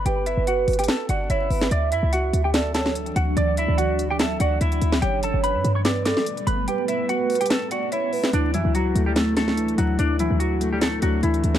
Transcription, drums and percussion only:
0.06 closed hi-hat
0.26 closed hi-hat
0.47 closed hi-hat
0.68 closed hi-hat, open hi-hat
0.73 closed hi-hat
0.79 closed hi-hat
0.84 closed hi-hat
0.88 snare, closed hi-hat
1.09 closed hi-hat
1.30 closed hi-hat
1.51 open hi-hat
1.61 snare
1.71 closed hi-hat
1.92 closed hi-hat
2.13 closed hi-hat
2.33 closed hi-hat
2.54 snare, closed hi-hat
2.74 snare, closed hi-hat
2.86 snare
2.95 closed hi-hat
3.06 closed hi-hat
3.16 closed hi-hat
3.37 closed hi-hat
3.57 closed hi-hat
3.78 closed hi-hat
3.99 closed hi-hat
4.19 snare, closed hi-hat
4.40 closed hi-hat
4.61 closed hi-hat
4.72 closed hi-hat
4.82 closed hi-hat
4.92 snare
5.02 closed hi-hat
5.23 closed hi-hat
5.44 closed hi-hat
5.65 closed hi-hat
5.85 snare, closed hi-hat
6.05 snare, closed hi-hat
6.17 snare
6.26 closed hi-hat
6.37 closed hi-hat
6.47 closed hi-hat
6.68 closed hi-hat
6.88 closed hi-hat
7.09 closed hi-hat
7.30 closed hi-hat, open hi-hat
7.35 closed hi-hat
7.41 closed hi-hat
7.46 closed hi-hat
7.50 snare, closed hi-hat
7.71 closed hi-hat
7.92 closed hi-hat
8.13 open hi-hat
8.24 snare
8.33 closed hi-hat
8.54 closed hi-hat
8.75 closed hi-hat
8.96 closed hi-hat
9.16 snare, closed hi-hat
9.37 snare, closed hi-hat
9.48 snare
9.57 closed hi-hat
9.68 closed hi-hat
9.78 closed hi-hat
9.99 closed hi-hat
10.19 closed hi-hat
10.40 closed hi-hat
10.61 closed hi-hat
10.81 snare, closed hi-hat
11.02 closed hi-hat
11.23 closed hi-hat
11.34 closed hi-hat
11.44 closed hi-hat
11.55 snare

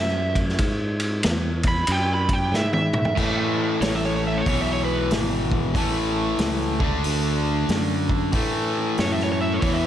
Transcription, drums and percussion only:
0.35 kick, ride
0.49 snare
0.58 kick, ride
1.00 ride
1.23 snare, ride
1.63 kick, ride
1.87 ride
2.29 kick, ride
2.54 snare
2.73 high tom
2.93 mid tom
3.05 floor tom
3.17 kick, crash
3.82 snare, open hi-hat
4.46 kick, open hi-hat
5.11 snare, open hi-hat
5.52 kick
5.75 kick, open hi-hat
6.38 snare, open hi-hat
6.80 kick
7.04 open hi-hat
7.69 snare, open hi-hat
8.09 kick
8.32 kick, open hi-hat
8.97 snare, open hi-hat
9.20 snare
9.62 kick, open hi-hat

